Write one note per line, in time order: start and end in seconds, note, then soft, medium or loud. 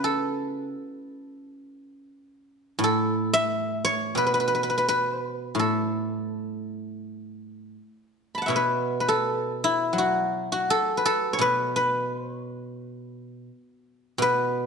0.00 0.72 C#3 soft
0.00 2.46 A3 soft
0.00 2.25 B3 soft
0.00 2.09 C#4 soft
0.00 1.84 E4 soft
0.00 1.71 F#4 soft
0.00 2.24 A4 medium
0.00 1.89 B4 medium
0.00 0.47 C#5 medium
2.79 4.16 A2 medium
2.84 5.03 A4 medium
3.33 5.06 E5 medium
3.85 5.75 C#5 medium
4.15 5.56 B2 medium
4.15 4.26 B4 medium
4.27 4.33 B4 medium
4.34 4.39 B4 medium
4.40 4.47 B4 soft
4.48 4.54 B4 medium
4.55 4.63 B4 soft
4.63 4.69 B4 medium
4.70 4.77 B4 soft
4.78 4.88 B4 medium
4.88 6.93 B4 medium
5.55 7.75 A2 medium
5.59 7.79 A4 medium
8.35 9.83 A5 soft
8.35 9.70 B5 soft
8.42 10.02 F#5 soft
8.46 10.67 B2 medium
8.46 10.41 C#5 medium
8.46 10.18 E5 soft
8.56 9.00 B4 medium
9.00 10.97 B4 medium
9.08 10.70 A4 medium
9.64 12.25 E4 medium
9.93 12.08 F#3 medium
9.98 10.52 F#4 medium
10.52 12.95 F#4 medium
10.70 11.05 A4 medium
10.97 11.41 B4 medium
11.05 13.25 A4 medium
11.33 11.76 C#5 medium
11.39 13.48 B2 medium
11.39 11.76 B4 medium
11.76 12.13 B4 medium
12.13 12.36 C5 medium
12.36 13.80 C#5 medium
14.18 14.66 B2 medium
14.18 14.66 B4 medium